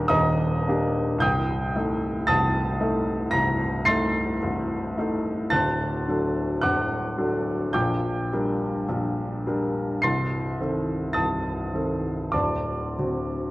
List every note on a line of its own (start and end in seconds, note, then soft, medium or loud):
0.00 0.10 D#1 medium
0.00 0.11 D#2 medium
0.00 0.68 A#3 soft
0.00 0.69 D4 soft
0.00 0.69 G4 medium
0.00 1.25 A#4 medium
0.00 1.22 G5 medium
0.00 0.10 A#5 medium
0.08 0.67 D#1 medium
0.08 0.67 D#2 medium
0.08 1.18 D#5 medium
0.08 1.18 A#5 medium
0.08 1.21 D#6 medium
0.68 1.19 A#3 soft
0.68 1.19 D4 soft
0.68 1.19 G4 medium
1.18 1.74 C1 soft
1.18 1.72 C2 medium
1.18 2.23 G5 medium
1.18 2.23 D#6 medium
1.18 2.26 G6 medium
1.75 2.23 A3 soft
1.75 2.24 D#4 soft
1.75 2.24 A4 soft
2.27 2.79 C1 medium
2.27 2.79 C2 medium
2.27 3.29 A5 medium
2.27 3.29 D#6 medium
2.27 3.32 A6 medium
2.80 3.29 A3 soft
2.80 3.29 D#4 soft
2.80 3.29 A4 soft
3.31 3.85 C1 medium
3.31 3.85 C2 medium
3.31 3.83 A#5 medium
3.31 3.86 A#6 medium
3.85 4.38 A3 soft
3.85 4.38 D#4 soft
3.85 4.38 A4 soft
3.85 5.46 C6 medium
3.85 5.46 A6 medium
3.85 5.50 C7 loud
4.42 4.95 C1 medium
4.42 4.95 C2 soft
4.97 5.48 A3 soft
4.97 5.48 D#4 soft
4.97 5.48 A4 soft
5.50 6.06 D1 soft
5.50 6.06 D2 medium
5.50 6.58 A5 medium
5.50 6.58 F#6 medium
5.50 6.61 A6 medium
6.08 6.59 F#3 soft
6.08 6.58 D4 soft
6.08 6.59 A4 soft
6.61 7.16 D1 soft
6.61 7.16 D2 soft
6.61 7.70 F#5 medium
6.61 7.70 D6 medium
6.61 7.73 F#6 medium
7.18 7.70 F#3 soft
7.18 7.70 D4 soft
7.18 7.70 A4 soft
7.73 8.30 A#1 medium
7.73 8.29 A#2 soft
7.73 8.84 G5 medium
7.73 8.84 D6 medium
7.73 8.88 G6 medium
8.33 8.85 G3 soft
8.33 8.85 D4 soft
8.33 8.86 A#4 soft
8.88 9.44 A#1 soft
8.88 9.44 A#2 soft
9.47 10.00 G3 soft
9.47 10.00 D4 soft
9.47 10.00 A#4 soft
10.02 10.59 C1 soft
10.02 10.59 C2 medium
10.02 11.12 C6 medium
10.02 11.12 A6 medium
10.02 11.15 C7 medium
10.60 11.12 D#3 soft
10.60 11.12 C4 soft
10.60 11.12 A4 soft
11.13 11.71 C1 soft
11.13 11.71 C2 soft
11.13 12.28 A5 medium
11.13 12.28 D#6 medium
11.13 12.32 A6 medium
11.74 12.29 D#3 soft
11.74 12.30 C4 soft
11.74 12.30 A4 soft
12.32 12.95 D1 soft
12.32 12.95 D2 soft
12.32 13.51 D5 soft
12.32 13.51 A5 soft
12.32 13.51 D6 medium
12.99 13.51 D3 soft
12.99 13.51 C4 soft
12.99 13.51 F#4 soft